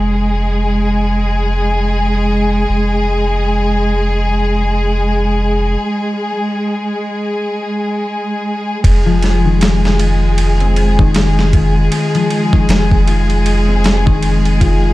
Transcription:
0.00 2.66 F1 medium
0.00 8.82 G#3 medium
0.00 8.82 G#4 medium
2.69 5.77 F1 medium
8.83 11.89 F1 loud
8.83 14.93 G#3 medium
8.83 14.93 G#4 medium
8.83 kick loud
8.83 ride medium
9.06 9.47 F3 medium
9.22 snare soft
9.22 ride medium
9.45 10.98 D#3 medium
9.61 snare loud
9.61 ride medium
9.85 snare medium
9.99 11.53 F4 medium
9.99 ride medium
10.38 ride medium
10.60 13.60 C4 medium
10.60 ride soft
10.76 ride medium
10.99 12.51 D#3 loud
10.99 kick loud
11.14 snare loud
11.14 ride medium
11.39 snare soft
11.53 13.07 F4 medium
11.53 kick medium
11.53 ride medium
11.92 ride medium
12.14 12.55 F3 medium
12.14 ride soft
12.30 ride medium
12.53 14.04 D#3 medium
12.53 kick medium
12.68 14.93 F1 medium
12.68 snare loud
12.68 ride medium
12.91 kick loud
13.07 14.60 F4 medium
13.07 ride medium
13.30 ride soft
13.46 ride medium
13.68 14.93 C4 medium
13.84 snare loud
13.84 ride medium
14.05 14.93 D#3 loud
14.05 kick loud
14.23 ride medium
14.45 ride soft
14.60 14.93 F4 medium
14.60 kick loud
14.60 ride medium

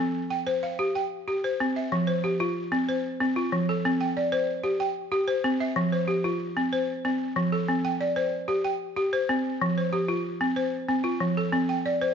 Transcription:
0.00 0.30 C4 medium
0.00 0.14 A4 medium
0.30 0.79 G5 medium
0.47 0.79 C5 medium
0.63 1.11 F5 medium
0.79 1.11 G4 medium
0.95 1.43 G5 medium
1.28 1.60 G4 medium
1.44 1.92 C5 medium
1.60 1.92 C4 medium
1.76 2.08 E5 medium
1.92 2.24 F3 medium
2.07 2.56 C5 medium
2.24 2.72 G4 medium
2.40 2.72 F4 medium
2.72 3.04 C4 medium
2.89 3.36 C5 medium
3.20 3.52 C4 medium
3.36 3.84 F4 medium
3.52 3.84 F3 medium
3.69 4.01 A4 medium
3.85 4.17 C4 medium
4.01 4.48 G5 medium
4.17 4.64 D5 medium
4.32 4.64 C5 medium
4.64 4.96 G4 medium
4.80 5.28 G5 medium
5.12 5.44 G4 medium
5.28 5.76 C5 medium
5.44 5.76 C4 medium
5.60 5.92 E5 medium
5.76 6.08 F3 medium
5.92 6.40 C5 medium
6.08 6.56 G4 medium
6.24 6.56 F4 medium
6.57 6.89 C4 medium
6.73 7.21 C5 medium
7.05 7.37 C4 medium
7.36 7.68 F3 medium
7.52 7.84 A4 medium
7.68 8.00 C4 medium
7.85 8.33 G5 medium
8.01 8.49 D5 medium
8.16 8.48 C5 medium
8.48 8.80 G4 medium
8.64 9.13 G5 medium
8.96 9.29 G4 medium
9.13 9.61 C5 medium
9.29 9.61 C4 medium
9.62 9.93 F3 medium
9.78 10.25 C5 medium
9.93 10.41 G4 medium
10.08 10.41 F4 medium
10.41 10.73 C4 medium
10.56 11.05 C5 medium
10.89 11.21 C4 medium
11.04 11.53 F4 medium
11.20 11.53 F3 medium
11.37 11.69 A4 medium
11.52 11.85 C4 medium
11.69 12.14 G5 medium
11.86 12.14 D5 medium
12.01 12.14 C5 medium

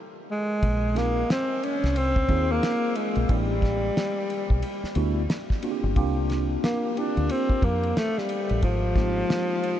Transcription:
0.31 0.99 G#3 medium
0.63 1.23 A#1 loud
0.63 kick loud
0.63 ride medium
0.95 1.21 A#3 medium
0.95 1.30 A#3 loud
0.95 1.21 C4 medium
0.95 1.22 D#4 medium
0.95 1.22 F4 medium
0.95 1.22 G#4 medium
0.95 snare soft
0.95 ride medium
1.30 1.65 C4 medium
1.30 snare loud
1.30 hi-hat pedal soft
1.30 ride medium
1.63 1.99 C#4 medium
1.63 ride soft
1.84 2.25 C2 medium
1.84 snare soft
1.84 ride soft
1.96 2.53 C4 loud
1.96 ride medium
2.16 kick medium
2.29 2.59 D#2 medium
2.29 3.24 A#3 medium
2.29 3.24 C4 medium
2.29 3.24 D#4 medium
2.29 3.24 F4 medium
2.29 3.25 G#4 medium
2.29 kick medium
2.29 ride medium
2.52 2.98 A#3 loud
2.63 snare loud
2.63 hi-hat pedal medium
2.63 ride medium
2.95 3.30 G#3 medium
2.95 ride medium
3.15 3.28 A#1 medium
3.15 ride soft
3.29 3.89 A1 loud
3.29 5.26 G3 loud
3.29 3.55 A3 medium
3.29 3.55 B3 medium
3.29 3.55 D4 medium
3.29 3.55 E4 medium
3.29 3.56 G4 medium
3.29 kick loud
3.29 ride medium
3.62 kick medium
3.62 snare soft
3.62 ride soft
3.97 snare loud
3.97 hi-hat pedal medium
3.97 ride medium
4.30 ride soft
4.50 4.61 B1 medium
4.50 kick medium
4.62 ride medium
4.83 muted fingered electric bass stroke soft
4.83 snare soft
4.95 5.26 D2 medium
4.95 5.22 A3 medium
4.95 5.22 B3 medium
4.95 5.22 D4 medium
4.95 5.22 E4 medium
4.95 5.22 F#4 medium
4.95 ride medium
5.30 snare loud
5.30 hi-hat pedal medium
5.30 ride medium
5.50 kick medium
5.50 snare soft
5.62 5.95 A#3 medium
5.62 5.95 C4 medium
5.62 5.95 D4 medium
5.62 5.95 F4 medium
5.62 5.71 F#4 medium
5.62 ride medium
5.71 5.96 G4 medium
5.83 5.95 G1 medium
5.96 6.56 C2 loud
5.96 6.91 A#3 medium
5.96 6.91 C4 medium
5.96 6.91 D4 medium
5.96 6.91 F4 medium
5.96 6.92 G4 loud
5.96 kick loud
5.96 ride medium
6.29 snare soft
6.29 ride soft
6.64 7.00 A#3 medium
6.64 snare loud
6.64 hi-hat pedal medium
6.64 ride medium
6.95 7.91 A#3 medium
6.95 7.91 C4 medium
6.95 7.91 D4 medium
6.95 7.33 D4 medium
6.95 7.05 E4 medium
6.95 7.92 G4 medium
6.95 ride medium
7.03 7.95 F4 medium
7.17 7.28 D2 medium
7.17 ride soft
7.29 7.67 C4 loud
7.29 ride medium
7.50 muted fingered electric bass stroke soft
7.50 kick medium
7.62 7.92 F2 loud
7.62 7.99 A#3 medium
7.62 kick medium
7.62 ride medium
7.83 ride soft
7.97 8.20 A3 loud
7.97 snare loud
7.97 hi-hat pedal medium
7.97 ride medium
8.18 8.63 G3 medium
8.18 snare soft
8.29 ride medium
8.49 8.62 A1 medium
8.49 ride soft
8.62 9.23 G#1 loud
8.62 9.80 F3 loud
8.62 kick loud
8.62 ride medium
8.95 9.80 G#3 medium
8.95 9.80 A#3 medium
8.95 9.80 C4 medium
8.95 9.80 D#4 medium
8.95 9.80 G4 medium
8.95 kick medium
8.95 snare soft
8.95 ride soft
9.30 snare loud
9.30 hi-hat pedal soft
9.30 ride medium
9.63 ride medium

